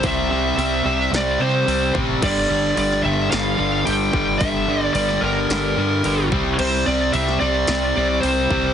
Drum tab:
CC |----------------|x---------------|----------------|x---------------|
HH |o---o---o---o---|----o---o---o---|o---o---o---o---|----o---o---o---|
SD |--------o-------|-----o--o-------|-----o--o-------|-----o--o-------|
BD |o-------------o-|o-------------o-|o-------------o-|--------------o-|